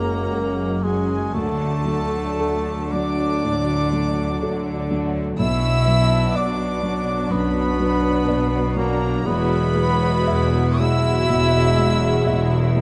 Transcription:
Already playing: double bass section F#1, cello section F#2, felt piano C#3 G#3 A#4, viola section F#3 G#3, french horn section G#3 C#4, cor anglais A#3, violin section C#4 F#4 A#5, flute A#4
0.33 double bass section F#1, cello section F#2, felt piano A#4
0.83 viola section F#3 G#3, cor anglais G#3, felt piano G#3, violin section C#4 F#4 G#5, flute G#4
1.34 felt piano D2, double bass section D2, cello section D3, french horn section F#3 D4, viola section F#3 A3, cor anglais A3, violin section D4 F#4 A5, flute A4
1.85 viola section F#3 A3, felt piano F#3, violin section D4 F#4
2.38 double bass section D2, cello section D3, felt piano A4
2.92 viola section F#3 A3, felt piano F#3, cor anglais D4, violin section D4 F#4 D6, flute D5
3.43 double bass section D2, felt piano A2, cello section D3
3.93 felt piano F#3, viola section F#3 A3, violin section D4 F#4
4.42 double bass section D2, cello section D3, felt piano A4
4.90 viola section F#3 A3, felt piano F#3, violin section D4 F#4
5.39 double bass section B1, felt piano B1, cello section B2, french horn section F#3 D4, cor anglais E4, flute E5, violin section E6
5.87 viola section F#3 B3, felt piano F#3, violin section D4 F#4
6.35 double bass section B1, cello section B2, cor anglais D4, felt piano D5, flute D5, violin section D6
6.83 felt piano F#3, viola section F#3 B3, violin section D4 F#4
7.30 double bass section B1, felt piano F#2, cello section B2, cor anglais B3, flute B4, violin section B5
7.79 felt piano F#3, viola section F#3 B3, violin section D4 F#4
8.28 double bass section B1, cello section B2, felt piano D5
8.76 felt piano F#3, viola section F#3 D4, cor anglais A#3, violin section D4 F#4 A#5, flute A#4
9.25 double bass section E1, felt piano E2, cello section E2, viola section F#3 G#3, french horn section G#3 F#4, cor anglais B3, violin section E4 F#4 B5, flute B4
9.75 viola section F#3 G#3, felt piano G#3, violin section E4 F#4
10.27 double bass section E1, cello section E2, felt piano E5
10.80 viola section F#3 G#3, felt piano G#3, cor anglais E4, violin section E4 F#4 E6, flute E5
11.29 double bass section E1, cello section E2, felt piano B2
11.78 viola section F#3 G#3, felt piano G#3, violin section E4 F#4
12.27 double bass section E1, cello section E2, felt piano E5
12.75 viola section F#3 G#3, felt piano G#3, violin section E4 F#4

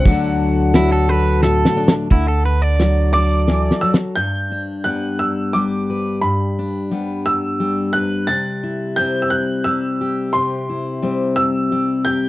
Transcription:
Already playing: upright piano F#5
0.05 upright bass D2, steel-string acoustic guitar D3 F#3 D4 F#4 A4, kick, closed hi-hat
0.74 steel-string acoustic guitar F#3 F#4, clean electric guitar E4, snare, closed hi-hat
0.92 clean electric guitar A4
1.09 steel-string acoustic guitar A4, clean electric guitar B4
1.43 steel-string acoustic guitar A2, clean electric guitar A4, snare
1.65 snare
1.77 steel-string acoustic guitar D4
1.88 snare
2.10 upright bass D2, steel-string acoustic guitar D3, clean electric guitar E4, kick, closed hi-hat
2.28 clean electric guitar A4
2.45 clean electric guitar B4
2.62 clean electric guitar D5
2.80 steel-string acoustic guitar F#3, snare, closed hi-hat
3.13 steel-string acoustic guitar A4, clean electric guitar D5, upright piano D6
3.48 steel-string acoustic guitar E3, snare
3.71 snare
3.81 steel-string acoustic guitar F#3, upright piano E6
3.94 snare
4.16 steel-string acoustic guitar G2, upright piano G6
4.52 steel-string acoustic guitar D4
4.84 steel-string acoustic guitar G3 B3, upright piano F#6
5.19 upright piano E6
5.53 steel-string acoustic guitar G3, upright piano D6
5.90 steel-string acoustic guitar B4
6.21 steel-string acoustic guitar G2, upright piano B5
6.59 steel-string acoustic guitar D4
6.91 steel-string acoustic guitar G3 B3
7.26 upright piano E6
7.60 steel-string acoustic guitar G3
7.93 steel-string acoustic guitar B4, upright piano F#6
8.27 steel-string acoustic guitar C3, upright piano A6
8.63 steel-string acoustic guitar E4
8.96 steel-string acoustic guitar G3 C4, upright piano G6
9.22 upright piano E6
9.30 upright piano F#6
9.64 steel-string acoustic guitar G3, upright piano E6
10.01 steel-string acoustic guitar G4
10.33 steel-string acoustic guitar C3, upright piano C6
10.69 steel-string acoustic guitar E4
11.02 steel-string acoustic guitar G3 C4
11.36 upright piano E6
11.72 steel-string acoustic guitar G3
12.05 steel-string acoustic guitar G4, upright piano G6

